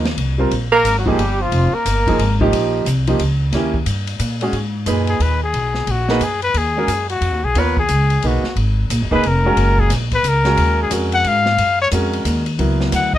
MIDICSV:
0, 0, Header, 1, 7, 480
1, 0, Start_track
1, 0, Tempo, 335196
1, 745, Time_signature, 3, 2, 24, 8
1, 18878, End_track
2, 0, Start_track
2, 0, Title_t, "Trumpet"
2, 0, Program_c, 0, 56
2, 1060, Note_on_c, 0, 70, 105
2, 1381, Note_off_c, 0, 70, 0
2, 1419, Note_on_c, 0, 66, 69
2, 1536, Note_on_c, 0, 67, 90
2, 1558, Note_off_c, 0, 66, 0
2, 2036, Note_on_c, 0, 65, 83
2, 2057, Note_off_c, 0, 67, 0
2, 2498, Note_on_c, 0, 70, 89
2, 2519, Note_off_c, 0, 65, 0
2, 3450, Note_off_c, 0, 70, 0
2, 7288, Note_on_c, 0, 68, 84
2, 7477, Note_on_c, 0, 71, 94
2, 7498, Note_off_c, 0, 68, 0
2, 7772, Note_off_c, 0, 71, 0
2, 7782, Note_on_c, 0, 68, 79
2, 8460, Note_on_c, 0, 66, 87
2, 8482, Note_off_c, 0, 68, 0
2, 8929, Note_on_c, 0, 68, 80
2, 8951, Note_off_c, 0, 66, 0
2, 9196, Note_off_c, 0, 68, 0
2, 9205, Note_on_c, 0, 71, 98
2, 9414, Note_on_c, 0, 68, 85
2, 9436, Note_off_c, 0, 71, 0
2, 10155, Note_off_c, 0, 68, 0
2, 10164, Note_on_c, 0, 66, 81
2, 10662, Note_on_c, 0, 68, 88
2, 10684, Note_off_c, 0, 66, 0
2, 10874, Note_on_c, 0, 71, 80
2, 10895, Note_off_c, 0, 68, 0
2, 11151, Note_off_c, 0, 71, 0
2, 11159, Note_on_c, 0, 68, 92
2, 11843, Note_on_c, 0, 66, 76
2, 11865, Note_off_c, 0, 68, 0
2, 12292, Note_off_c, 0, 66, 0
2, 13094, Note_on_c, 0, 71, 95
2, 13283, Note_on_c, 0, 70, 84
2, 13304, Note_off_c, 0, 71, 0
2, 14031, Note_on_c, 0, 68, 86
2, 14052, Note_off_c, 0, 70, 0
2, 14194, Note_off_c, 0, 68, 0
2, 14528, Note_on_c, 0, 71, 102
2, 14722, Note_on_c, 0, 70, 95
2, 14744, Note_off_c, 0, 71, 0
2, 15476, Note_off_c, 0, 70, 0
2, 15497, Note_on_c, 0, 68, 89
2, 15637, Note_off_c, 0, 68, 0
2, 15956, Note_on_c, 0, 78, 108
2, 16148, Note_on_c, 0, 77, 94
2, 16170, Note_off_c, 0, 78, 0
2, 16909, Note_off_c, 0, 77, 0
2, 16919, Note_on_c, 0, 73, 106
2, 17015, Note_off_c, 0, 73, 0
2, 18544, Note_on_c, 0, 78, 88
2, 18808, Note_off_c, 0, 78, 0
2, 18824, Note_on_c, 0, 75, 101
2, 18878, Note_off_c, 0, 75, 0
2, 18878, End_track
3, 0, Start_track
3, 0, Title_t, "Grand piano"
3, 0, Program_c, 1, 0
3, 545, Note_on_c, 1, 55, 60
3, 562, Note_on_c, 1, 60, 60
3, 569, Note_on_c, 1, 65, 58
3, 578, Note_on_c, 1, 70, 74
3, 715, Note_off_c, 1, 55, 0
3, 724, Note_off_c, 1, 60, 0
3, 727, Note_off_c, 1, 65, 0
3, 732, Note_off_c, 1, 70, 0
3, 1512, Note_on_c, 1, 53, 74
3, 1522, Note_on_c, 1, 58, 71
3, 1531, Note_on_c, 1, 63, 64
3, 1541, Note_on_c, 1, 68, 86
3, 1678, Note_off_c, 1, 53, 0
3, 1683, Note_off_c, 1, 58, 0
3, 1687, Note_off_c, 1, 63, 0
3, 1692, Note_off_c, 1, 68, 0
3, 2969, Note_on_c, 1, 53, 69
3, 2971, Note_on_c, 1, 58, 58
3, 2981, Note_on_c, 1, 63, 59
3, 2989, Note_on_c, 1, 68, 71
3, 3125, Note_off_c, 1, 53, 0
3, 3126, Note_off_c, 1, 58, 0
3, 3131, Note_off_c, 1, 63, 0
3, 3135, Note_off_c, 1, 68, 0
3, 3447, Note_on_c, 1, 53, 74
3, 3449, Note_on_c, 1, 58, 65
3, 3455, Note_on_c, 1, 63, 75
3, 3465, Note_on_c, 1, 67, 92
3, 4065, Note_off_c, 1, 53, 0
3, 4066, Note_off_c, 1, 58, 0
3, 4069, Note_off_c, 1, 63, 0
3, 4074, Note_off_c, 1, 67, 0
3, 4404, Note_on_c, 1, 53, 66
3, 4416, Note_on_c, 1, 58, 62
3, 4419, Note_on_c, 1, 63, 59
3, 4434, Note_on_c, 1, 67, 74
3, 4562, Note_off_c, 1, 53, 0
3, 4568, Note_off_c, 1, 58, 0
3, 4569, Note_off_c, 1, 63, 0
3, 4577, Note_off_c, 1, 67, 0
3, 5062, Note_on_c, 1, 58, 61
3, 5074, Note_on_c, 1, 61, 59
3, 5078, Note_on_c, 1, 64, 55
3, 5087, Note_on_c, 1, 67, 64
3, 5334, Note_off_c, 1, 58, 0
3, 5339, Note_off_c, 1, 61, 0
3, 5342, Note_off_c, 1, 64, 0
3, 5346, Note_off_c, 1, 67, 0
3, 6323, Note_on_c, 1, 56, 68
3, 6334, Note_on_c, 1, 61, 67
3, 6338, Note_on_c, 1, 66, 64
3, 6348, Note_on_c, 1, 68, 77
3, 6481, Note_off_c, 1, 56, 0
3, 6486, Note_off_c, 1, 61, 0
3, 6488, Note_off_c, 1, 66, 0
3, 6493, Note_off_c, 1, 68, 0
3, 6960, Note_on_c, 1, 46, 64
3, 6972, Note_on_c, 1, 63, 55
3, 6977, Note_on_c, 1, 68, 60
3, 6989, Note_on_c, 1, 71, 72
3, 7692, Note_off_c, 1, 46, 0
3, 7698, Note_off_c, 1, 63, 0
3, 7701, Note_off_c, 1, 68, 0
3, 7707, Note_off_c, 1, 71, 0
3, 8723, Note_on_c, 1, 58, 71
3, 8733, Note_on_c, 1, 63, 67
3, 8737, Note_on_c, 1, 68, 69
3, 8744, Note_on_c, 1, 71, 80
3, 8881, Note_off_c, 1, 58, 0
3, 8886, Note_off_c, 1, 63, 0
3, 8888, Note_off_c, 1, 68, 0
3, 8892, Note_off_c, 1, 71, 0
3, 9689, Note_on_c, 1, 56, 65
3, 9703, Note_on_c, 1, 61, 61
3, 9710, Note_on_c, 1, 66, 56
3, 9716, Note_on_c, 1, 70, 76
3, 9845, Note_off_c, 1, 56, 0
3, 9852, Note_off_c, 1, 61, 0
3, 9855, Note_off_c, 1, 66, 0
3, 9858, Note_off_c, 1, 70, 0
3, 10825, Note_on_c, 1, 59, 64
3, 10837, Note_on_c, 1, 65, 57
3, 10845, Note_on_c, 1, 70, 62
3, 10856, Note_on_c, 1, 73, 70
3, 11097, Note_off_c, 1, 59, 0
3, 11102, Note_off_c, 1, 65, 0
3, 11106, Note_off_c, 1, 70, 0
3, 11112, Note_off_c, 1, 73, 0
3, 11794, Note_on_c, 1, 58, 59
3, 11802, Note_on_c, 1, 63, 50
3, 11804, Note_on_c, 1, 68, 48
3, 11818, Note_on_c, 1, 71, 60
3, 12061, Note_off_c, 1, 58, 0
3, 12065, Note_off_c, 1, 63, 0
3, 12066, Note_off_c, 1, 68, 0
3, 12073, Note_off_c, 1, 71, 0
3, 13046, Note_on_c, 1, 58, 76
3, 13053, Note_on_c, 1, 63, 68
3, 13059, Note_on_c, 1, 68, 72
3, 13066, Note_on_c, 1, 71, 86
3, 13204, Note_off_c, 1, 58, 0
3, 13208, Note_off_c, 1, 63, 0
3, 13210, Note_off_c, 1, 68, 0
3, 13214, Note_off_c, 1, 71, 0
3, 13534, Note_on_c, 1, 56, 77
3, 13548, Note_on_c, 1, 61, 75
3, 13553, Note_on_c, 1, 66, 73
3, 13562, Note_on_c, 1, 70, 86
3, 14150, Note_off_c, 1, 56, 0
3, 14157, Note_off_c, 1, 61, 0
3, 14160, Note_off_c, 1, 66, 0
3, 14165, Note_off_c, 1, 70, 0
3, 14958, Note_on_c, 1, 56, 80
3, 14969, Note_on_c, 1, 61, 72
3, 14974, Note_on_c, 1, 66, 64
3, 14977, Note_on_c, 1, 70, 87
3, 15582, Note_off_c, 1, 56, 0
3, 15588, Note_off_c, 1, 61, 0
3, 15590, Note_off_c, 1, 66, 0
3, 15592, Note_off_c, 1, 70, 0
3, 15610, Note_on_c, 1, 56, 58
3, 15619, Note_on_c, 1, 61, 55
3, 15634, Note_on_c, 1, 66, 58
3, 15642, Note_on_c, 1, 70, 63
3, 16339, Note_off_c, 1, 56, 0
3, 16344, Note_off_c, 1, 61, 0
3, 16351, Note_off_c, 1, 66, 0
3, 16355, Note_off_c, 1, 70, 0
3, 17071, Note_on_c, 1, 56, 70
3, 17081, Note_on_c, 1, 61, 63
3, 17087, Note_on_c, 1, 66, 61
3, 17099, Note_on_c, 1, 70, 74
3, 17790, Note_off_c, 1, 56, 0
3, 17795, Note_off_c, 1, 61, 0
3, 17798, Note_off_c, 1, 66, 0
3, 17805, Note_off_c, 1, 70, 0
3, 18023, Note_on_c, 1, 54, 58
3, 18033, Note_on_c, 1, 59, 50
3, 18041, Note_on_c, 1, 64, 52
3, 18043, Note_on_c, 1, 70, 61
3, 18747, Note_off_c, 1, 54, 0
3, 18752, Note_off_c, 1, 59, 0
3, 18756, Note_off_c, 1, 64, 0
3, 18757, Note_off_c, 1, 70, 0
3, 18878, End_track
4, 0, Start_track
4, 0, Title_t, "Tenor saxophone"
4, 0, Program_c, 2, 66
4, 1029, Note_on_c, 2, 58, 103
4, 1365, Note_off_c, 2, 58, 0
4, 1403, Note_on_c, 2, 54, 52
4, 1541, Note_on_c, 2, 55, 82
4, 1562, Note_off_c, 2, 54, 0
4, 2011, Note_on_c, 2, 53, 83
4, 2032, Note_off_c, 2, 55, 0
4, 2491, Note_on_c, 2, 58, 86
4, 2512, Note_off_c, 2, 53, 0
4, 3447, Note_off_c, 2, 58, 0
4, 18878, End_track
5, 0, Start_track
5, 0, Title_t, "Upright bass"
5, 0, Program_c, 3, 32
5, 0, Note_on_c, 3, 39, 87
5, 229, Note_off_c, 3, 39, 0
5, 237, Note_on_c, 3, 36, 78
5, 716, Note_off_c, 3, 36, 0
5, 725, Note_on_c, 3, 34, 77
5, 1196, Note_off_c, 3, 34, 0
5, 1205, Note_on_c, 3, 32, 76
5, 1679, Note_off_c, 3, 32, 0
5, 1685, Note_on_c, 3, 31, 82
5, 2159, Note_off_c, 3, 31, 0
5, 2168, Note_on_c, 3, 29, 86
5, 2457, Note_off_c, 3, 29, 0
5, 2654, Note_on_c, 3, 31, 86
5, 3122, Note_off_c, 3, 31, 0
5, 3134, Note_on_c, 3, 32, 83
5, 3602, Note_off_c, 3, 32, 0
5, 3611, Note_on_c, 3, 34, 74
5, 4076, Note_off_c, 3, 34, 0
5, 4085, Note_on_c, 3, 36, 86
5, 4557, Note_off_c, 3, 36, 0
5, 4569, Note_on_c, 3, 37, 85
5, 5031, Note_off_c, 3, 37, 0
5, 5040, Note_on_c, 3, 39, 85
5, 5514, Note_off_c, 3, 39, 0
5, 5525, Note_on_c, 3, 43, 86
5, 5997, Note_off_c, 3, 43, 0
5, 6005, Note_on_c, 3, 46, 77
5, 6468, Note_off_c, 3, 46, 0
5, 6477, Note_on_c, 3, 44, 73
5, 6952, Note_off_c, 3, 44, 0
5, 6963, Note_on_c, 3, 42, 81
5, 7430, Note_off_c, 3, 42, 0
5, 7439, Note_on_c, 3, 39, 81
5, 7914, Note_off_c, 3, 39, 0
5, 7926, Note_on_c, 3, 35, 81
5, 8398, Note_off_c, 3, 35, 0
5, 8404, Note_on_c, 3, 34, 88
5, 8872, Note_off_c, 3, 34, 0
5, 8880, Note_on_c, 3, 42, 82
5, 9355, Note_off_c, 3, 42, 0
5, 9362, Note_on_c, 3, 39, 86
5, 9830, Note_off_c, 3, 39, 0
5, 9839, Note_on_c, 3, 42, 80
5, 10315, Note_off_c, 3, 42, 0
5, 10322, Note_on_c, 3, 41, 87
5, 10477, Note_off_c, 3, 41, 0
5, 10477, Note_on_c, 3, 39, 60
5, 10640, Note_off_c, 3, 39, 0
5, 10649, Note_on_c, 3, 35, 61
5, 10797, Note_off_c, 3, 35, 0
5, 10805, Note_on_c, 3, 39, 78
5, 11278, Note_off_c, 3, 39, 0
5, 11302, Note_on_c, 3, 37, 86
5, 11767, Note_off_c, 3, 37, 0
5, 11785, Note_on_c, 3, 35, 82
5, 12066, Note_off_c, 3, 35, 0
5, 12252, Note_on_c, 3, 32, 78
5, 12722, Note_off_c, 3, 32, 0
5, 12744, Note_on_c, 3, 34, 89
5, 12903, Note_off_c, 3, 34, 0
5, 12903, Note_on_c, 3, 30, 62
5, 13056, Note_off_c, 3, 30, 0
5, 13065, Note_on_c, 3, 29, 61
5, 13212, Note_off_c, 3, 29, 0
5, 13221, Note_on_c, 3, 29, 80
5, 13687, Note_off_c, 3, 29, 0
5, 13697, Note_on_c, 3, 30, 88
5, 14165, Note_off_c, 3, 30, 0
5, 14179, Note_on_c, 3, 34, 93
5, 14646, Note_off_c, 3, 34, 0
5, 14653, Note_on_c, 3, 37, 90
5, 15123, Note_off_c, 3, 37, 0
5, 15137, Note_on_c, 3, 39, 83
5, 15605, Note_off_c, 3, 39, 0
5, 15612, Note_on_c, 3, 41, 90
5, 16082, Note_off_c, 3, 41, 0
5, 16094, Note_on_c, 3, 44, 87
5, 16563, Note_off_c, 3, 44, 0
5, 16578, Note_on_c, 3, 42, 80
5, 17046, Note_off_c, 3, 42, 0
5, 17063, Note_on_c, 3, 41, 92
5, 17525, Note_off_c, 3, 41, 0
5, 17534, Note_on_c, 3, 39, 87
5, 18004, Note_off_c, 3, 39, 0
5, 18020, Note_on_c, 3, 37, 69
5, 18487, Note_off_c, 3, 37, 0
5, 18495, Note_on_c, 3, 38, 88
5, 18878, Note_off_c, 3, 38, 0
5, 18878, End_track
6, 0, Start_track
6, 0, Title_t, "Muted upright bass strokes"
6, 2483, Note_on_c, 9, 29, 36
6, 2626, Note_off_c, 9, 29, 0
6, 12078, Note_on_c, 9, 29, 36
6, 12221, Note_off_c, 9, 29, 0
6, 18878, End_track
7, 0, Start_track
7, 0, Title_t, "Drums"
7, 75, Note_on_c, 9, 38, 63
7, 75, Note_on_c, 9, 51, 44
7, 219, Note_off_c, 9, 38, 0
7, 219, Note_off_c, 9, 51, 0
7, 252, Note_on_c, 9, 51, 62
7, 395, Note_off_c, 9, 51, 0
7, 735, Note_on_c, 9, 51, 59
7, 879, Note_off_c, 9, 51, 0
7, 1215, Note_on_c, 9, 44, 61
7, 1215, Note_on_c, 9, 51, 75
7, 1358, Note_off_c, 9, 44, 0
7, 1358, Note_off_c, 9, 51, 0
7, 1520, Note_on_c, 9, 36, 57
7, 1663, Note_off_c, 9, 36, 0
7, 1702, Note_on_c, 9, 51, 59
7, 1845, Note_off_c, 9, 51, 0
7, 2177, Note_on_c, 9, 51, 60
7, 2320, Note_off_c, 9, 51, 0
7, 2658, Note_on_c, 9, 44, 63
7, 2658, Note_on_c, 9, 51, 75
7, 2801, Note_off_c, 9, 44, 0
7, 2801, Note_off_c, 9, 51, 0
7, 2963, Note_on_c, 9, 36, 65
7, 2972, Note_on_c, 9, 51, 50
7, 3106, Note_off_c, 9, 36, 0
7, 3115, Note_off_c, 9, 51, 0
7, 3141, Note_on_c, 9, 51, 62
7, 3285, Note_off_c, 9, 51, 0
7, 3442, Note_on_c, 9, 36, 60
7, 3585, Note_off_c, 9, 36, 0
7, 3623, Note_on_c, 9, 51, 67
7, 3766, Note_off_c, 9, 51, 0
7, 4098, Note_on_c, 9, 44, 62
7, 4098, Note_on_c, 9, 51, 67
7, 4241, Note_off_c, 9, 44, 0
7, 4241, Note_off_c, 9, 51, 0
7, 4401, Note_on_c, 9, 51, 54
7, 4544, Note_off_c, 9, 51, 0
7, 4575, Note_on_c, 9, 51, 67
7, 4718, Note_off_c, 9, 51, 0
7, 5049, Note_on_c, 9, 38, 38
7, 5049, Note_on_c, 9, 51, 61
7, 5192, Note_off_c, 9, 38, 0
7, 5192, Note_off_c, 9, 51, 0
7, 5356, Note_on_c, 9, 36, 59
7, 5499, Note_off_c, 9, 36, 0
7, 5530, Note_on_c, 9, 44, 52
7, 5530, Note_on_c, 9, 51, 74
7, 5673, Note_off_c, 9, 44, 0
7, 5673, Note_off_c, 9, 51, 0
7, 5833, Note_on_c, 9, 51, 53
7, 5976, Note_off_c, 9, 51, 0
7, 6008, Note_on_c, 9, 44, 53
7, 6008, Note_on_c, 9, 51, 76
7, 6151, Note_off_c, 9, 44, 0
7, 6151, Note_off_c, 9, 51, 0
7, 6314, Note_on_c, 9, 51, 48
7, 6457, Note_off_c, 9, 51, 0
7, 6486, Note_on_c, 9, 51, 49
7, 6629, Note_off_c, 9, 51, 0
7, 6962, Note_on_c, 9, 44, 53
7, 6962, Note_on_c, 9, 51, 66
7, 7105, Note_off_c, 9, 44, 0
7, 7105, Note_off_c, 9, 51, 0
7, 7264, Note_on_c, 9, 51, 42
7, 7407, Note_off_c, 9, 51, 0
7, 7451, Note_on_c, 9, 51, 58
7, 7594, Note_off_c, 9, 51, 0
7, 7928, Note_on_c, 9, 51, 59
7, 8072, Note_off_c, 9, 51, 0
7, 8227, Note_on_c, 9, 38, 39
7, 8370, Note_off_c, 9, 38, 0
7, 8408, Note_on_c, 9, 51, 59
7, 8551, Note_off_c, 9, 51, 0
7, 8715, Note_on_c, 9, 38, 60
7, 8858, Note_off_c, 9, 38, 0
7, 8889, Note_on_c, 9, 44, 46
7, 8889, Note_on_c, 9, 51, 67
7, 9032, Note_off_c, 9, 44, 0
7, 9032, Note_off_c, 9, 51, 0
7, 9195, Note_on_c, 9, 51, 45
7, 9339, Note_off_c, 9, 51, 0
7, 9371, Note_on_c, 9, 51, 64
7, 9514, Note_off_c, 9, 51, 0
7, 9853, Note_on_c, 9, 44, 61
7, 9853, Note_on_c, 9, 51, 65
7, 9996, Note_off_c, 9, 44, 0
7, 9996, Note_off_c, 9, 51, 0
7, 10159, Note_on_c, 9, 51, 49
7, 10303, Note_off_c, 9, 51, 0
7, 10333, Note_on_c, 9, 51, 61
7, 10476, Note_off_c, 9, 51, 0
7, 10815, Note_on_c, 9, 51, 62
7, 10958, Note_off_c, 9, 51, 0
7, 11124, Note_on_c, 9, 36, 69
7, 11267, Note_off_c, 9, 36, 0
7, 11292, Note_on_c, 9, 44, 63
7, 11292, Note_on_c, 9, 51, 67
7, 11436, Note_off_c, 9, 44, 0
7, 11436, Note_off_c, 9, 51, 0
7, 11600, Note_on_c, 9, 51, 47
7, 11744, Note_off_c, 9, 51, 0
7, 11777, Note_on_c, 9, 51, 59
7, 11921, Note_off_c, 9, 51, 0
7, 12084, Note_on_c, 9, 38, 40
7, 12227, Note_off_c, 9, 38, 0
7, 12264, Note_on_c, 9, 51, 61
7, 12407, Note_off_c, 9, 51, 0
7, 12747, Note_on_c, 9, 44, 60
7, 12747, Note_on_c, 9, 51, 75
7, 12890, Note_off_c, 9, 44, 0
7, 12890, Note_off_c, 9, 51, 0
7, 13050, Note_on_c, 9, 36, 57
7, 13193, Note_off_c, 9, 36, 0
7, 13224, Note_on_c, 9, 51, 62
7, 13368, Note_off_c, 9, 51, 0
7, 13704, Note_on_c, 9, 51, 62
7, 13847, Note_off_c, 9, 51, 0
7, 14007, Note_on_c, 9, 36, 53
7, 14150, Note_off_c, 9, 36, 0
7, 14178, Note_on_c, 9, 38, 39
7, 14178, Note_on_c, 9, 44, 52
7, 14178, Note_on_c, 9, 51, 71
7, 14321, Note_off_c, 9, 38, 0
7, 14321, Note_off_c, 9, 44, 0
7, 14321, Note_off_c, 9, 51, 0
7, 14485, Note_on_c, 9, 51, 53
7, 14486, Note_on_c, 9, 36, 57
7, 14628, Note_off_c, 9, 51, 0
7, 14629, Note_off_c, 9, 36, 0
7, 14664, Note_on_c, 9, 44, 64
7, 14664, Note_on_c, 9, 51, 68
7, 14807, Note_off_c, 9, 44, 0
7, 14807, Note_off_c, 9, 51, 0
7, 14965, Note_on_c, 9, 38, 50
7, 14965, Note_on_c, 9, 51, 45
7, 15108, Note_off_c, 9, 38, 0
7, 15108, Note_off_c, 9, 51, 0
7, 15142, Note_on_c, 9, 51, 62
7, 15285, Note_off_c, 9, 51, 0
7, 15619, Note_on_c, 9, 44, 64
7, 15619, Note_on_c, 9, 51, 78
7, 15762, Note_off_c, 9, 44, 0
7, 15762, Note_off_c, 9, 51, 0
7, 15927, Note_on_c, 9, 51, 51
7, 16070, Note_off_c, 9, 51, 0
7, 16102, Note_on_c, 9, 51, 61
7, 16245, Note_off_c, 9, 51, 0
7, 16407, Note_on_c, 9, 38, 45
7, 16550, Note_off_c, 9, 38, 0
7, 16588, Note_on_c, 9, 51, 70
7, 16731, Note_off_c, 9, 51, 0
7, 17062, Note_on_c, 9, 44, 69
7, 17062, Note_on_c, 9, 51, 66
7, 17205, Note_off_c, 9, 44, 0
7, 17205, Note_off_c, 9, 51, 0
7, 17375, Note_on_c, 9, 51, 47
7, 17518, Note_off_c, 9, 51, 0
7, 17544, Note_on_c, 9, 44, 55
7, 17544, Note_on_c, 9, 51, 73
7, 17687, Note_off_c, 9, 44, 0
7, 17687, Note_off_c, 9, 51, 0
7, 17843, Note_on_c, 9, 51, 52
7, 17986, Note_off_c, 9, 51, 0
7, 18027, Note_on_c, 9, 51, 56
7, 18170, Note_off_c, 9, 51, 0
7, 18336, Note_on_c, 9, 38, 52
7, 18480, Note_off_c, 9, 38, 0
7, 18504, Note_on_c, 9, 38, 35
7, 18504, Note_on_c, 9, 44, 57
7, 18504, Note_on_c, 9, 51, 72
7, 18647, Note_off_c, 9, 38, 0
7, 18647, Note_off_c, 9, 44, 0
7, 18647, Note_off_c, 9, 51, 0
7, 18807, Note_on_c, 9, 36, 53
7, 18878, Note_off_c, 9, 36, 0
7, 18878, End_track
0, 0, End_of_file